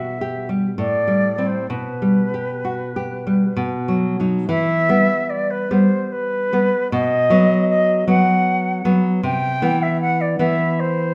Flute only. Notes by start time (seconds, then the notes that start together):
Already playing: E5
0.79 D5
1.47 C5
1.70 B4
4.48 E5
5.30 D5
5.51 B4
5.71 C5
6.12 B4
6.92 D#5
7.69 D#5
8.09 F#5
9.25 G5
9.83 E5
10.01 F#5
10.21 D5
10.39 E5
10.80 C5